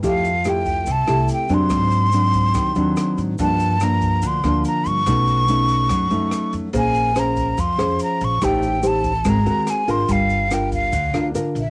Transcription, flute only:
X:1
M:4/4
L:1/8
Q:1/4=143
K:Gdor
V:1 name="Flute"
f2 g2 a2 g c'- | c'6- c' z | a2 b2 c'2 b _d'- | _d'6- d' z |
_a2 b2 c'2 b _d' | g2 a2 b2 _a c' | f2 g f3 z e |]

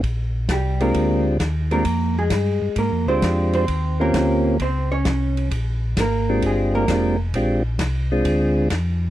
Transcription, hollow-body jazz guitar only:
X:1
M:4/4
L:1/8
Q:"Swing" 1/4=131
K:Bbmix
V:1 name="Hollow-body jazz guitar"
z2 [G,G] [B,B]2 z2 [B,B]- | [B,B] [A,A]3 [B,B] [Cc]2 [Cc]- | [Cc] [B,B]3 [Cc] [_D_d]3 | z2 [B,B]2 [A,A] [B,B]2 z |
z8 |]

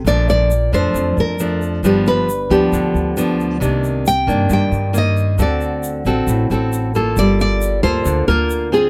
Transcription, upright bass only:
X:1
M:4/4
L:1/8
Q:1/4=135
K:Gm
V:1 name="Upright bass" clef=bass
B,,,3 F,, F,, F,,3 | G,,,3 D,, D,, D,,3 | C,,3 G,, G,, G,,3 | D,,3 A,,, A,,, A,,,3 |
G,,,3 D,, D,, D,,3 |]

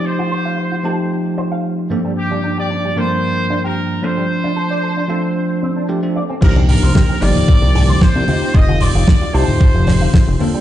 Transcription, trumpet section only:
X:1
M:4/4
L:1/16
Q:1/4=113
K:Cdor
V:1 name="Trumpet section"
c8 z8 | G3 d3 c4- c B3 c2- | c12 z4 | B2 B4 d6 c4 |
e2 d4 c8 z2 |]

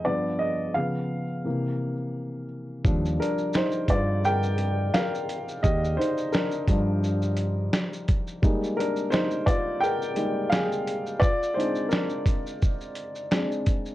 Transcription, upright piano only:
X:1
M:4/4
L:1/8
Q:"Swing 16ths" 1/4=86
K:Eb
V:1 name="Upright piano"
d e f4- f z | z [DB] [Ec] [Fd] [Bg]2 [Bf]2 | [Ge] [Ec] [DB]4 z2 | z [DB] [Ec] [Fd] [Bg]2 [Af]2 |
[Fd] [Ec] [DB]4 z2 |]
V:2 name="Upright piano" clef=bass
[G,,F,=B,] z [_D,F,_C] z [=C,=E,_B,] z3 | [F,G,D] z6 z | z3 [F,G,D] z4 | [G,A,B,E] z4 [G,A,B,E] z2 |
z [A,CD] z4 [A,CD] z |]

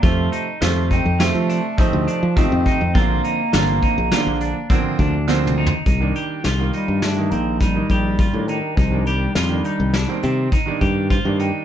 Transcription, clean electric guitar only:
X:1
M:5/4
L:1/8
Q:1/4=103
K:Cdor
V:1 name="Clean electric guitar"
F E F E F D C D C E | F E F E F D C D C E | E G F E D C E G F E | E G F E D C E G F E |]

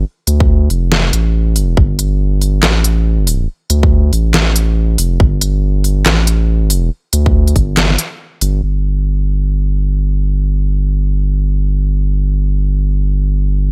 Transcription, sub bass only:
X:1
M:4/4
L:1/8
Q:"Swing 16ths" 1/4=140
K:Cdor
V:1 name="Sub bass" clef=bass
z D,,2 F,,,2 A,,,3 | G,,,4 A,,,4 | z D,,2 A,,,4 F,,, | G,,,4 A,,,4 |
z D,,2 G,,,2 z2 G,,, | G,,,8- | G,,,8- | G,,,8 |]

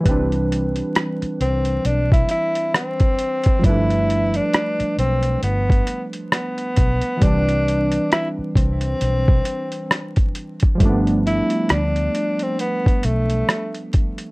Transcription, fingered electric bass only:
X:1
M:4/4
L:1/16
Q:"Swing 16ths" 1/4=67
K:C
V:1 name="Fingered electric bass" clef=bass
C,,4 z2 C,,2 B,,,2 z6 | G,,,4 z2 B,,,2 G,,,2 z4 B,,, z | C,,4 z2 C,,2 B,,,2 z6 | G,,,3 z D,,2 z4 B,,,2 z4 |]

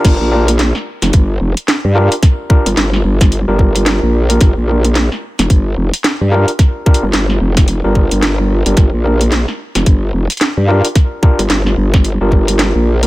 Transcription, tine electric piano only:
X:1
M:4/4
L:1/16
Q:"Swing 16ths" 1/4=110
K:Gm
V:1 name="Tine electric piano"
[DFGB]2 [DFGB] z8 z3 [DFGB] z | z2 [DFGB] z6 [DFGB]6 [DFGB]- | [DFGB] z [DFGB] z8 z3 [DFGB] z | z2 [DFGB] z6 [DFGB]6 [DFGB]- |
[DFGB] z [DFGB] z8 z3 [DFGB] z | z2 [DFGB] z6 [DFGB]6 [DFGB] |]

